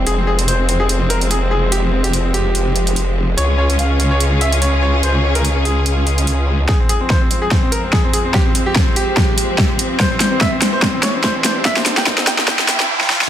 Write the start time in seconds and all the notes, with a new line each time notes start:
Already playing: C4
0.07 F1 F3 G#3 G#4, closed hi-hat
0.18 C4
0.27 G#4
0.38 C4, closed hi-hat
0.48 C5, closed hi-hat
0.59 C4
0.68 C4, closed hi-hat
0.80 G#4
0.89 C4, closed hi-hat
1.00 C4
1.10 A#4, closed hi-hat
1.21 C4, closed hi-hat
1.31 G#4, closed hi-hat
1.42 C4
1.51 G#4
1.62 C4
1.72 G4, closed hi-hat
1.83 C4
1.93 C4
2.04 G4, closed hi-hat
2.13 C4, closed hi-hat
2.25 C4
2.34 G4, closed hi-hat
2.55 closed hi-hat
2.76 closed hi-hat
2.87 closed hi-hat
2.96 closed hi-hat
3.37 C#2 C#3 C#4 F4 G#4 C#5, closed hi-hat
3.49 C#4
3.58 C#5
3.70 C#4, closed hi-hat
3.79 F5, closed hi-hat
3.90 C#4
4.00 C#4, closed hi-hat
4.11 C#5
4.20 C#4, closed hi-hat
4.32 C#4
4.41 E5, closed hi-hat
4.52 C#4, closed hi-hat
4.62 C#5, closed hi-hat
4.73 C#4
4.83 C#5
4.94 C#4
5.03 C5, closed hi-hat
5.15 C#4
5.24 C#4
5.35 A#4, closed hi-hat
5.44 C#4, closed hi-hat
5.56 C#4
5.65 G#4, closed hi-hat
5.86 closed hi-hat
6.07 closed hi-hat
6.18 closed hi-hat
6.27 closed hi-hat
6.69 F2 F3 G#3 C4 G#4, kick, snare, riser
6.80 C4
6.89 G#4, closed hi-hat
7.01 C4
7.10 C5, kick, snare
7.21 C4
7.31 C4, closed hi-hat
7.42 G#4
7.51 C4, kick, snare
7.63 C4
7.72 A#4, closed hi-hat
7.83 C4
7.93 G#4, kick, snare
8.04 C4
8.13 G#4, closed hi-hat
8.25 C4
8.34 G4, kick, snare
8.46 C4
8.55 C4, closed hi-hat
8.66 G4
8.75 C4, kick, snare
8.87 C4
8.96 G4, closed hi-hat
9.17 kick, snare
9.38 closed hi-hat
9.58 kick, snare
9.79 closed hi-hat
10.00 E2 E3 G3 C5, kick, snare
10.11 C4
10.20 C5, snare, closed hi-hat
10.32 C4
10.41 E5, kick, snare
10.52 C4
10.62 C4, snare, closed hi-hat
10.73 C5
10.82 C4, kick, snare
10.94 C4
11.03 C#5, snare, closed hi-hat
11.14 C4
11.24 C5, kick, snare
11.35 C4
11.44 C5, snare, closed hi-hat
11.56 C4
11.65 E5, kick, snare, noise sweep
11.77 C4, snare
11.86 C4, snare, closed hi-hat
11.97 G5, snare
12.06 C4, kick, snare
12.18 C4, snare
12.27 G5, snare, closed hi-hat
12.38 snare
12.48 kick, snare
12.59 snare
12.69 snare, closed hi-hat
12.80 snare
13.01 snare
13.10 snare
13.21 snare